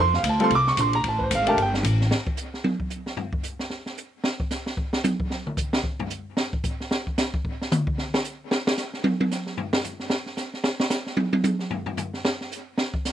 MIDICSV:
0, 0, Header, 1, 4, 480
1, 0, Start_track
1, 0, Tempo, 266667
1, 1877, Time_signature, 4, 2, 24, 8
1, 23620, End_track
2, 0, Start_track
2, 0, Title_t, "Grand piano"
2, 0, Program_c, 0, 0
2, 0, Note_on_c, 0, 84, 114
2, 257, Note_off_c, 0, 84, 0
2, 270, Note_on_c, 0, 77, 76
2, 446, Note_off_c, 0, 77, 0
2, 523, Note_on_c, 0, 81, 98
2, 708, Note_on_c, 0, 55, 88
2, 721, Note_on_c, 0, 60, 81
2, 725, Note_on_c, 0, 65, 81
2, 741, Note_on_c, 0, 69, 97
2, 759, Note_off_c, 0, 81, 0
2, 787, Note_on_c, 0, 84, 108
2, 891, Note_off_c, 0, 55, 0
2, 897, Note_off_c, 0, 60, 0
2, 899, Note_off_c, 0, 65, 0
2, 907, Note_off_c, 0, 69, 0
2, 945, Note_off_c, 0, 84, 0
2, 996, Note_on_c, 0, 86, 127
2, 1222, Note_on_c, 0, 85, 102
2, 1236, Note_off_c, 0, 86, 0
2, 1402, Note_off_c, 0, 85, 0
2, 1443, Note_on_c, 0, 84, 101
2, 1698, Note_off_c, 0, 84, 0
2, 1711, Note_on_c, 0, 82, 90
2, 1886, Note_off_c, 0, 82, 0
2, 1949, Note_on_c, 0, 81, 93
2, 2137, Note_on_c, 0, 71, 61
2, 2161, Note_off_c, 0, 71, 0
2, 2191, Note_off_c, 0, 81, 0
2, 2221, Note_on_c, 0, 72, 81
2, 2381, Note_off_c, 0, 72, 0
2, 2431, Note_on_c, 0, 77, 100
2, 2640, Note_on_c, 0, 57, 90
2, 2644, Note_on_c, 0, 62, 76
2, 2660, Note_on_c, 0, 67, 88
2, 2671, Note_on_c, 0, 81, 118
2, 2672, Note_off_c, 0, 77, 0
2, 2675, Note_on_c, 0, 70, 88
2, 2816, Note_off_c, 0, 57, 0
2, 2818, Note_off_c, 0, 62, 0
2, 2826, Note_off_c, 0, 67, 0
2, 2833, Note_off_c, 0, 70, 0
2, 2846, Note_off_c, 0, 81, 0
2, 2920, Note_on_c, 0, 79, 98
2, 3067, Note_off_c, 0, 79, 0
2, 23620, End_track
3, 0, Start_track
3, 0, Title_t, "Upright bass"
3, 0, Program_c, 1, 32
3, 0, Note_on_c, 1, 41, 98
3, 406, Note_off_c, 1, 41, 0
3, 416, Note_on_c, 1, 38, 102
3, 886, Note_off_c, 1, 38, 0
3, 897, Note_on_c, 1, 36, 83
3, 1372, Note_off_c, 1, 36, 0
3, 1386, Note_on_c, 1, 34, 105
3, 1857, Note_off_c, 1, 34, 0
3, 1868, Note_on_c, 1, 33, 90
3, 2338, Note_off_c, 1, 33, 0
3, 2352, Note_on_c, 1, 32, 102
3, 2811, Note_off_c, 1, 32, 0
3, 2822, Note_on_c, 1, 31, 87
3, 3285, Note_off_c, 1, 31, 0
3, 3296, Note_on_c, 1, 33, 108
3, 3771, Note_off_c, 1, 33, 0
3, 23620, End_track
4, 0, Start_track
4, 0, Title_t, "Drums"
4, 244, Note_on_c, 9, 38, 54
4, 424, Note_off_c, 9, 38, 0
4, 428, Note_on_c, 9, 44, 56
4, 428, Note_on_c, 9, 51, 94
4, 608, Note_off_c, 9, 44, 0
4, 608, Note_off_c, 9, 51, 0
4, 715, Note_on_c, 9, 51, 53
4, 895, Note_off_c, 9, 51, 0
4, 908, Note_on_c, 9, 51, 71
4, 1088, Note_off_c, 9, 51, 0
4, 1206, Note_on_c, 9, 38, 49
4, 1386, Note_off_c, 9, 38, 0
4, 1387, Note_on_c, 9, 44, 70
4, 1387, Note_on_c, 9, 51, 73
4, 1567, Note_off_c, 9, 44, 0
4, 1567, Note_off_c, 9, 51, 0
4, 1676, Note_on_c, 9, 51, 53
4, 1856, Note_off_c, 9, 51, 0
4, 1868, Note_on_c, 9, 51, 68
4, 2048, Note_off_c, 9, 51, 0
4, 2159, Note_on_c, 9, 36, 58
4, 2339, Note_off_c, 9, 36, 0
4, 2353, Note_on_c, 9, 44, 69
4, 2353, Note_on_c, 9, 51, 88
4, 2533, Note_off_c, 9, 44, 0
4, 2533, Note_off_c, 9, 51, 0
4, 2639, Note_on_c, 9, 51, 62
4, 2819, Note_off_c, 9, 51, 0
4, 2839, Note_on_c, 9, 51, 65
4, 3019, Note_off_c, 9, 51, 0
4, 3129, Note_on_c, 9, 38, 67
4, 3309, Note_off_c, 9, 38, 0
4, 3320, Note_on_c, 9, 44, 59
4, 3320, Note_on_c, 9, 51, 84
4, 3500, Note_off_c, 9, 44, 0
4, 3500, Note_off_c, 9, 51, 0
4, 3615, Note_on_c, 9, 38, 48
4, 3795, Note_off_c, 9, 38, 0
4, 3797, Note_on_c, 9, 38, 97
4, 3977, Note_off_c, 9, 38, 0
4, 4079, Note_on_c, 9, 36, 83
4, 4259, Note_off_c, 9, 36, 0
4, 4263, Note_on_c, 9, 44, 61
4, 4443, Note_off_c, 9, 44, 0
4, 4567, Note_on_c, 9, 38, 40
4, 4747, Note_off_c, 9, 38, 0
4, 4755, Note_on_c, 9, 48, 93
4, 4935, Note_off_c, 9, 48, 0
4, 5035, Note_on_c, 9, 36, 65
4, 5215, Note_off_c, 9, 36, 0
4, 5221, Note_on_c, 9, 44, 59
4, 5401, Note_off_c, 9, 44, 0
4, 5514, Note_on_c, 9, 38, 48
4, 5694, Note_off_c, 9, 38, 0
4, 5703, Note_on_c, 9, 43, 106
4, 5883, Note_off_c, 9, 43, 0
4, 5987, Note_on_c, 9, 36, 78
4, 6167, Note_off_c, 9, 36, 0
4, 6176, Note_on_c, 9, 44, 62
4, 6356, Note_off_c, 9, 44, 0
4, 6469, Note_on_c, 9, 38, 55
4, 6649, Note_off_c, 9, 38, 0
4, 6659, Note_on_c, 9, 38, 48
4, 6839, Note_off_c, 9, 38, 0
4, 6949, Note_on_c, 9, 38, 43
4, 7129, Note_off_c, 9, 38, 0
4, 7150, Note_on_c, 9, 44, 55
4, 7330, Note_off_c, 9, 44, 0
4, 7625, Note_on_c, 9, 38, 94
4, 7805, Note_off_c, 9, 38, 0
4, 7916, Note_on_c, 9, 36, 78
4, 8096, Note_off_c, 9, 36, 0
4, 8108, Note_on_c, 9, 44, 61
4, 8113, Note_on_c, 9, 38, 56
4, 8288, Note_off_c, 9, 44, 0
4, 8293, Note_off_c, 9, 38, 0
4, 8394, Note_on_c, 9, 38, 60
4, 8574, Note_off_c, 9, 38, 0
4, 8590, Note_on_c, 9, 36, 74
4, 8770, Note_off_c, 9, 36, 0
4, 8874, Note_on_c, 9, 38, 95
4, 9054, Note_off_c, 9, 38, 0
4, 9070, Note_on_c, 9, 44, 61
4, 9075, Note_on_c, 9, 48, 108
4, 9250, Note_off_c, 9, 44, 0
4, 9255, Note_off_c, 9, 48, 0
4, 9355, Note_on_c, 9, 36, 77
4, 9535, Note_off_c, 9, 36, 0
4, 9548, Note_on_c, 9, 38, 56
4, 9728, Note_off_c, 9, 38, 0
4, 9839, Note_on_c, 9, 47, 57
4, 10019, Note_off_c, 9, 47, 0
4, 10027, Note_on_c, 9, 44, 61
4, 10029, Note_on_c, 9, 36, 81
4, 10207, Note_off_c, 9, 44, 0
4, 10209, Note_off_c, 9, 36, 0
4, 10316, Note_on_c, 9, 38, 106
4, 10496, Note_off_c, 9, 38, 0
4, 10506, Note_on_c, 9, 36, 70
4, 10686, Note_off_c, 9, 36, 0
4, 10792, Note_on_c, 9, 43, 105
4, 10972, Note_off_c, 9, 43, 0
4, 10978, Note_on_c, 9, 44, 60
4, 11158, Note_off_c, 9, 44, 0
4, 11462, Note_on_c, 9, 38, 95
4, 11642, Note_off_c, 9, 38, 0
4, 11755, Note_on_c, 9, 36, 77
4, 11935, Note_off_c, 9, 36, 0
4, 11942, Note_on_c, 9, 44, 59
4, 11951, Note_on_c, 9, 36, 86
4, 12122, Note_off_c, 9, 44, 0
4, 12131, Note_off_c, 9, 36, 0
4, 12248, Note_on_c, 9, 38, 43
4, 12428, Note_off_c, 9, 38, 0
4, 12437, Note_on_c, 9, 38, 103
4, 12617, Note_off_c, 9, 38, 0
4, 12725, Note_on_c, 9, 36, 68
4, 12905, Note_off_c, 9, 36, 0
4, 12916, Note_on_c, 9, 44, 60
4, 12922, Note_on_c, 9, 38, 97
4, 13096, Note_off_c, 9, 44, 0
4, 13102, Note_off_c, 9, 38, 0
4, 13208, Note_on_c, 9, 36, 89
4, 13388, Note_off_c, 9, 36, 0
4, 13405, Note_on_c, 9, 36, 75
4, 13585, Note_off_c, 9, 36, 0
4, 13707, Note_on_c, 9, 38, 54
4, 13886, Note_on_c, 9, 44, 69
4, 13887, Note_off_c, 9, 38, 0
4, 13891, Note_on_c, 9, 47, 115
4, 14066, Note_off_c, 9, 44, 0
4, 14071, Note_off_c, 9, 47, 0
4, 14167, Note_on_c, 9, 36, 86
4, 14347, Note_off_c, 9, 36, 0
4, 14366, Note_on_c, 9, 38, 53
4, 14546, Note_off_c, 9, 38, 0
4, 14652, Note_on_c, 9, 38, 94
4, 14832, Note_off_c, 9, 38, 0
4, 14833, Note_on_c, 9, 44, 58
4, 15013, Note_off_c, 9, 44, 0
4, 15322, Note_on_c, 9, 38, 100
4, 15502, Note_off_c, 9, 38, 0
4, 15609, Note_on_c, 9, 38, 108
4, 15789, Note_off_c, 9, 38, 0
4, 15792, Note_on_c, 9, 44, 65
4, 15797, Note_on_c, 9, 38, 53
4, 15972, Note_off_c, 9, 44, 0
4, 15977, Note_off_c, 9, 38, 0
4, 16082, Note_on_c, 9, 38, 40
4, 16262, Note_off_c, 9, 38, 0
4, 16269, Note_on_c, 9, 48, 108
4, 16449, Note_off_c, 9, 48, 0
4, 16568, Note_on_c, 9, 48, 94
4, 16748, Note_off_c, 9, 48, 0
4, 16762, Note_on_c, 9, 44, 55
4, 16767, Note_on_c, 9, 38, 50
4, 16942, Note_off_c, 9, 44, 0
4, 16947, Note_off_c, 9, 38, 0
4, 17036, Note_on_c, 9, 38, 40
4, 17216, Note_off_c, 9, 38, 0
4, 17234, Note_on_c, 9, 43, 98
4, 17414, Note_off_c, 9, 43, 0
4, 17513, Note_on_c, 9, 38, 105
4, 17693, Note_off_c, 9, 38, 0
4, 17708, Note_on_c, 9, 44, 65
4, 17714, Note_on_c, 9, 43, 51
4, 17888, Note_off_c, 9, 44, 0
4, 17894, Note_off_c, 9, 43, 0
4, 17991, Note_on_c, 9, 38, 41
4, 18171, Note_off_c, 9, 38, 0
4, 18175, Note_on_c, 9, 38, 106
4, 18355, Note_off_c, 9, 38, 0
4, 18471, Note_on_c, 9, 38, 35
4, 18651, Note_off_c, 9, 38, 0
4, 18661, Note_on_c, 9, 44, 63
4, 18666, Note_on_c, 9, 38, 57
4, 18841, Note_off_c, 9, 44, 0
4, 18846, Note_off_c, 9, 38, 0
4, 18964, Note_on_c, 9, 38, 38
4, 19144, Note_off_c, 9, 38, 0
4, 19147, Note_on_c, 9, 38, 98
4, 19327, Note_off_c, 9, 38, 0
4, 19433, Note_on_c, 9, 38, 106
4, 19613, Note_off_c, 9, 38, 0
4, 19619, Note_on_c, 9, 44, 59
4, 19624, Note_on_c, 9, 38, 104
4, 19799, Note_off_c, 9, 44, 0
4, 19804, Note_off_c, 9, 38, 0
4, 19916, Note_on_c, 9, 38, 42
4, 20096, Note_off_c, 9, 38, 0
4, 20101, Note_on_c, 9, 48, 104
4, 20281, Note_off_c, 9, 48, 0
4, 20389, Note_on_c, 9, 48, 98
4, 20569, Note_off_c, 9, 48, 0
4, 20583, Note_on_c, 9, 44, 57
4, 20589, Note_on_c, 9, 48, 109
4, 20763, Note_off_c, 9, 44, 0
4, 20769, Note_off_c, 9, 48, 0
4, 20868, Note_on_c, 9, 38, 38
4, 21048, Note_off_c, 9, 38, 0
4, 21069, Note_on_c, 9, 43, 107
4, 21249, Note_off_c, 9, 43, 0
4, 21349, Note_on_c, 9, 43, 96
4, 21529, Note_off_c, 9, 43, 0
4, 21547, Note_on_c, 9, 44, 60
4, 21553, Note_on_c, 9, 43, 96
4, 21727, Note_off_c, 9, 44, 0
4, 21733, Note_off_c, 9, 43, 0
4, 21845, Note_on_c, 9, 38, 46
4, 22025, Note_off_c, 9, 38, 0
4, 22043, Note_on_c, 9, 38, 100
4, 22223, Note_off_c, 9, 38, 0
4, 22336, Note_on_c, 9, 38, 42
4, 22516, Note_off_c, 9, 38, 0
4, 22526, Note_on_c, 9, 44, 59
4, 22706, Note_off_c, 9, 44, 0
4, 22996, Note_on_c, 9, 38, 102
4, 23176, Note_off_c, 9, 38, 0
4, 23286, Note_on_c, 9, 36, 82
4, 23466, Note_off_c, 9, 36, 0
4, 23490, Note_on_c, 9, 44, 60
4, 23495, Note_on_c, 9, 38, 57
4, 23620, Note_off_c, 9, 38, 0
4, 23620, Note_off_c, 9, 44, 0
4, 23620, End_track
0, 0, End_of_file